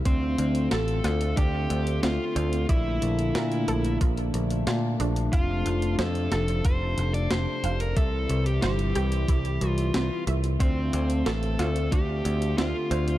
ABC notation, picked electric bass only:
X:1
M:4/4
L:1/8
Q:1/4=91
K:Dm
V:1 name="Picked electric bass" clef=bass
D,, D,, A,,, D,, D,, D,, D,, D,, | B,,, B,,, B,, B,,, B,,, B,,, B,, B,,, | F,,, F,,, F,, F,,, F,,, F,,, F,,, F,,, | C,, C,, G,,, C,, C,, C,, C,, C,, |
D,, D,, A,,, D,, D,, D,, D,, D,, |]